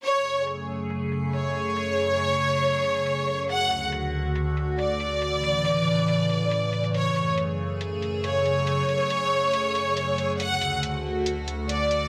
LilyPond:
<<
  \new Staff \with { instrumentName = "Violin section" } { \time 4/4 \key fis \minor \tempo 4 = 139 cis''4 r2 cis''4~ | cis''1 | fis''4 r2 d''4~ | d''1 |
cis''4 r2 cis''4~ | cis''1 | fis''4 r2 d''4 | }
  \new Staff \with { instrumentName = "Ambient pad" } { \clef bass \time 4/4 \key fis \minor <fis, cis a gis'>1~ | <fis, cis a gis'>1 | <d, d a fis'>1 | <a, cis e b'>1 |
<fis, cis a gis'>1~ | <fis, cis a gis'>1 | <d, d a fis'>1 | }
  \new DrumStaff \with { instrumentName = "Drums" } \drummode { \time 4/4 hh8 hh8 hh4 hh8 hh8 hh8 hh8 | hh8 hh8 hh4 hh8 hh8 hh8 hh8 | hh8 hh8 hh4 hh8 hh8 hh8 hh8 | hh8 hh8 hh4 hh8 hh8 hh8 hh16 hh16 |
hh8 hh8 hh4 hh8 hh8 hh8 hh8 | hh8 hh8 hh4 hh8 hh8 hh8 hh8 | hh8 hh8 hh4 hh8 hh8 hh8 hh8 | }
>>